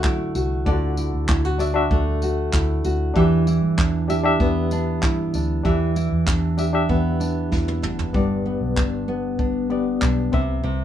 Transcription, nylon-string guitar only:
Already playing: D3 A3 F#4 D5
0.04 E4
0.35 F#4
0.66 D3 D5
0.98 E4
1.29 E4
1.45 F#4
1.59 D5
1.91 A3
2.23 F#4
2.54 E4
2.85 F#4
3.16 E3 G4
3.47 E4
3.78 D4
4.10 G4
4.40 B3
4.72 D4
5.03 E4
5.35 D4
5.65 E3 G4
5.96 E4
6.27 D4
6.58 G4
6.89 B3
7.20 D4
7.52 E4
7.82 D4
8.14 G2
8.46 B3
8.77 D4
9.08 B3
9.39 D4
9.70 B3
10.01 D4
10.33 C3
10.63 C3

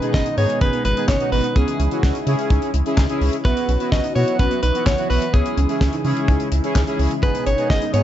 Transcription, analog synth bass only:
0.14 G#1
0.38 G#2
0.61 G#1
0.85 G#1
1.08 G#1
1.32 G#1
1.56 C#2
1.79 C#2
2.03 C#2
2.27 C#3
2.50 C#2
2.74 C#2
2.97 C#2
3.21 C#2
3.45 B1
3.68 B1
3.92 B1
4.16 B2
4.39 B1
4.63 B1
4.86 B1
5.10 B1
5.34 C#2
5.57 C#2
5.81 C#2
6.05 C#3
6.28 C#2
6.52 C#2
6.75 C#2
6.99 C#2
7.23 G#1
7.46 G#1
7.70 G#1
7.94 G#2

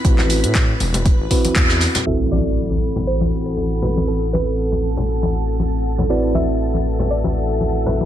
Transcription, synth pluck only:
2.06 E5
2.32 D5
3.07 C5
3.83 B4
4.08 A4
4.33 B4
6.10 D5
6.35 E5
7.11 D5
7.86 B4

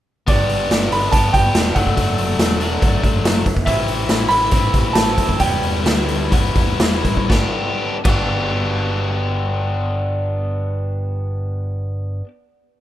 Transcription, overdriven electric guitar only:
0.27 B3 D4 G4
1.12 B3 D4 G4
1.76 F#3 A3 D4
2.60 F#3 A3 D4
3.66 E3 C4 E4
4.52 E3 C4 E4
5.39 G3 B3 E4
6.31 G3 B3 E4
7.29 B3 D4 G4
8.04 B3 D4 G4

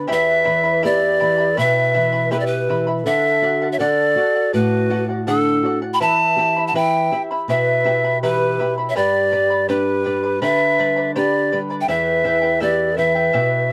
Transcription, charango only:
0.07 E4 G4 E5 G5 B5
0.44 E4 E5 G5 B5
0.64 E4 E5 B5
0.82 E4 G4 E5 G5 B5
1.20 E4 E5 G5 B5
1.38 E4 E5 B5
1.57 E4 G4 E5 G5 B5
1.94 E4 E5 G5 B5
2.13 E4 E5 B5
2.31 E4 G4 E5 G5 B5
2.69 E4 E5 G5 B5
2.87 E4 E5 B5
3.06 A4 D5 F#5
3.42 A4 D5 F#5
3.62 D5 F#5
3.80 A4 D5 F#5
4.17 A4 D5 F#5
4.36 D5 F#5
4.53 A4 D5 F#5
4.90 A4 D5 F#5
5.09 D5 F#5
5.27 A4 D5 F#5
5.64 A4 D5 F#5
5.82 D5 F#5
6.00 E4 B4 E5 G5 B5
6.38 E4 E5 G5 B5
6.57 E4 E5 B5
6.75 E4 B4 E5 G5 B5
7.11 E4 E5 G5 B5
7.31 E4 E5 B5
7.49 E4 B4 E5 G5 B5
7.84 E4 E5 G5 B5
8.04 E4 E5 B5
8.23 E4 B4 E5 G5 B5
8.59 E4 E5 G5 B5
8.78 E4 E5 B5
8.96 G4 B4 D5 G5 B5
9.32 B4 D5 G5 B5
9.50 B4 D5 B5
9.69 G4 B4 D5 G5 B5
10.04 B4 D5 G5 B5
10.24 B4 D5 B5
10.42 G4 B4 D5 G5 B5
10.79 B4 D5 G5 B5
10.96 B4 D5 B5
11.15 G4 B4 D5 G5 B5
11.52 B4 D5 G5 B5
11.70 B4 D5 B5
11.88 E4 G4 B4 E5 G5
12.24 E4 B4 E5 G5
12.42 E4 B4 G5
12.60 E4 G4 B4 E5 G5
12.97 E4 B4 E5 G5
13.15 E4 B4 G5
13.33 E4 G4 B4 E5 G5

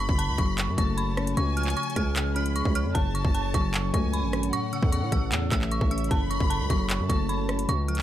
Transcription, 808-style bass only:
0.09 F#1
0.29 C#2
0.38 F#1
0.68 F#2
0.78 F#1
1.37 C#2
1.96 C#2
2.65 C#2
2.85 F2
2.95 F#1
3.25 F#1
3.54 F#1
3.94 C#2
4.23 G#1
4.83 E2
5.02 A2
5.12 A1
5.32 E2
5.52 A1
5.81 A1
6.11 F#1
6.40 F#1
6.60 C#2
6.70 F#1
7.00 F#2
7.10 F#1
7.69 C#2

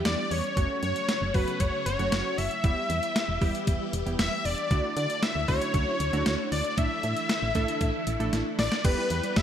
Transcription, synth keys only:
Already playing: G3 B3 E4 G4
0.57 F#3 A3 C#4 F#4
1.34 F#3 A3 C#4 F#4
1.99 F#3 A3 C#4 F#4
2.64 G3 B3 E4 G4
3.41 G3 B3 E4 G4
4.06 G3 B3 E4 G4
4.71 A3 D4 E4 F#4
5.49 A3 D4 E4 F#4
6.13 A3 D4 E4 F#4
6.78 A3 D4 E4 A4
7.55 A3 D4 E4 A4
8.20 A3 D4 E4 A4
8.85 G3 B3 E4 G4

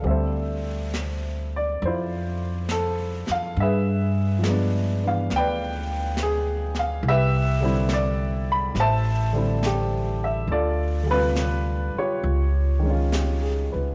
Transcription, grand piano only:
0.02 D3 G3 C4
0.07 A4 C5 E5
1.56 D5
1.85 E4 F4 C5
2.71 A4
3.32 F5
3.60 G#4 B4 E5
4.39 F3 G#3
4.46 B3 D4
5.03 E3 B3 D4
5.07 F5
5.36 B4 D5 G5
6.23 G#4
6.79 F5
7.08 G4 B4 E5
7.60 D3 G3 C4
7.65 E4
7.94 D5
8.52 B5
8.80 C5 E5 A5
9.33 D3 G3 C4
9.38 E4
9.66 G4
10.24 E5
10.51 F4 A4 D5
11.03 D3 G3
11.10 C3 F4 B4
11.98 F4 G4 C#5
12.79 D#3 G#3
12.86 C#4
12.90 F4
13.13 G4
13.43 G#4
13.72 B4

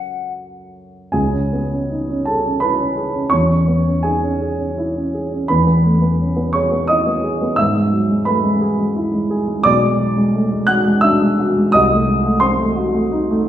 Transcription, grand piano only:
Already playing: F#2 C#4 F#4 A4
1.12 C#2 G#4 G#5
1.33 C#4
1.53 B3
1.72 C#4
1.91 D#4
2.09 C#4
2.25 G#4 A4 A5
2.45 C#4
2.60 E4 B4 B5
2.80 C#4
2.97 G#4
3.14 C#4
3.30 E2 C#5 C#6
3.50 C#4
3.68 B3
3.86 C#4
4.03 D#4 G#4 G#5
4.23 C#4
4.41 G#4
4.59 C#4
4.78 E4
4.96 C#4
5.14 G#4
5.33 C#4
5.48 E2 B4 B5
5.67 B3
5.85 A3
6.02 B3
6.20 C#4
6.37 B3
6.53 G#4 C#5 C#6
6.72 B3
6.87 E4 D#5 D#6
7.07 B3
7.23 G#4
7.42 B3
7.56 G#2 E5 E6
7.76 G#3
7.93 F#3
8.10 G#3
8.25 A3 B4 B5
8.44 G#3
8.61 G#4
8.79 G#3
8.96 E4
9.13 G#3
9.30 G#4
9.48 G#3
9.63 B1 D5 D6
9.83 G#3
9.99 F#3
10.17 G#3
10.35 A3
10.52 G#3
10.67 F#4 F#5 F#6
10.86 G#3
11.01 D4 E5 E6
11.21 G#3
11.39 F#4
11.57 G#3
11.72 C2 D#5 D#6
11.91 A3
12.08 G#3
12.25 A3
12.40 C4 C5 C6
12.60 A3
12.76 F#4
12.93 A3
13.12 D#4
13.30 A3

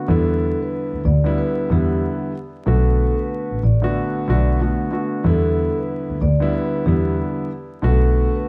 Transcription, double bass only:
0.09 E2
0.93 D2
1.06 D2
1.70 E2
2.67 B1
3.51 A1
3.64 A1
4.28 B1
5.25 E2
6.09 D2
6.22 D2
6.86 E2
7.83 B1

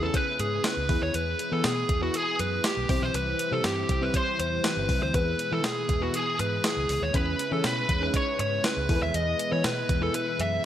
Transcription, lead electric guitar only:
0.03 A4
0.15 B4
0.40 G#4
0.65 B4
1.03 C#5
1.15 B4
1.53 A4
1.65 G#4
2.03 F#4
2.15 G#4
2.40 B4
2.65 G4
3.03 C5
3.15 B4
3.53 A4
3.65 G4
4.03 B4
4.15 C5
4.40 C5
4.65 B4
5.03 C5
5.15 B4
5.53 A4
5.65 G#4
6.03 F#4
6.15 G#4
6.40 B4
6.65 G#4
7.03 C#5
7.15 B4
7.53 A4
7.65 B4
8.03 B4
8.15 C#5
8.40 C#5
8.66 B4
9.03 E5
9.15 D#5
9.53 C#5
9.65 B4
10.03 A4
10.15 B4
10.41 E5

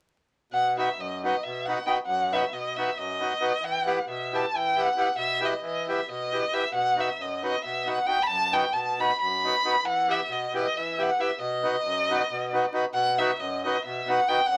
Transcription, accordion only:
0.52 B2
0.77 B3 D#4 F#4 B4
0.98 F#2
1.23 B3 D#4 F#4 B4
1.45 B2
1.67 B3 D#4 F#4 B4
1.86 B3 D#4 F#4 B4
2.06 F#2
2.32 B3 D#4 F#4 B4
2.52 B2
2.77 B3 D#4 F#4 B4
2.97 F#2
3.20 B3 D#4 F#4 B4
3.40 B3 D#4 F#4 B4
3.61 E3
3.85 B3 E4 G4 B4
4.07 B2
4.32 B3 E4 G4 B4
4.54 E3
4.76 B3 E4 G4 B4
4.96 B3 E4 G4 B4
5.16 B2
5.40 B3 E4 G4 B4
5.62 E3
5.88 B3 E4 G4 B4
6.09 B2
6.32 B3 E4 G4 B4
6.52 B3 E4 G4 B4
6.72 B2
6.96 B3 D#4 F#4 B4
7.18 F#2
7.42 B3 D#4 F#4 B4
7.64 B2
7.86 B3 D#4 F#4 B4
8.06 B3 D#4 F#4 B4
8.28 F#2
8.52 B3 D#4 F#4 B4
8.73 B2
8.99 B3 D#4 F#4 B4
9.21 F#2
9.44 B3 D#4 F#4 B4
9.64 B3 D#4 F#4 B4
9.83 E3
10.08 B3 E4 G4 B4
10.28 B2
10.54 B3 E4 G4 B4
10.76 E3
10.98 B3 E4 G4 B4
11.19 B3 E4 G4 B4
11.39 B2
11.63 B3 D#4 F#4 B4
11.84 F#2
12.09 B3 D#4 F#4 B4
12.31 B2
12.53 B3 D#4 F#4 B4
12.72 B3 D#4 F#4 B4
12.94 B2
13.19 B3 D#4 F#4 B4
13.39 F#2
13.65 B3 D#4 F#4 B4
13.85 B2
14.08 B3 D#4 F#4 B4
14.28 B3 D#4 F#4 B4
14.49 F#2

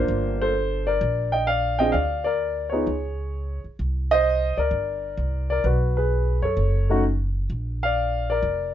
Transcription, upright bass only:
0.08 G1
1.01 A#1
1.94 D2
2.87 C#2
3.64 muted upright bass stroke
3.79 C2
4.57 C#2
4.71 G1
5.17 C2
5.64 B1
6.42 F#2
6.57 F#1
7.50 A#1
8.42 F1

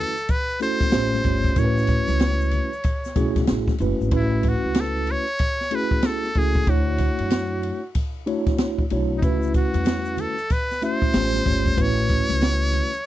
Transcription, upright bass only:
0.93 A1
1.25 G1
1.56 A1
2.09 C#2
3.16 B1
3.49 A1
3.80 F#1
4.01 G#1
4.12 A1
4.64 C#2
6.35 C#2
6.67 D2
7.20 F#2
8.91 B1
9.23 C#2
9.74 E2
11.13 A1
11.46 G1
11.77 A1
12.29 C#2

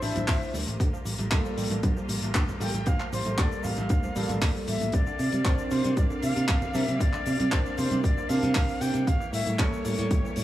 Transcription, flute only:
0.02 E5
2.62 G5
2.88 F5
3.13 C5
3.38 D5
3.64 F5
4.69 E5
4.94 D5
5.72 C5
5.98 D5
6.24 F5
6.75 E5
7.01 D5
7.78 C5
8.04 D5
8.29 F5
8.81 G5
9.07 F5
9.33 E5
9.59 C#5
9.85 C#5

